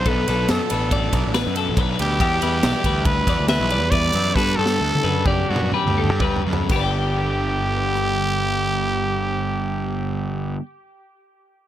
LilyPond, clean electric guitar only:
\new Staff \with { instrumentName = "Clean electric guitar" } { \time 5/4 \key g \major \tempo 4 = 129 a'8 a'4 b'8 d''4 b'8 a'8 b'4 | g'8 b'8 d''8 b'4 d''8 e''8 d''8 b'4 | a'8 a'4 b'8 d''4 b'8 a'8 b'4 | <g' b' d'' g''>1~ <g' b' d'' g''>4~ |
<g' b' d'' g''>1~ <g' b' d'' g''>4 | }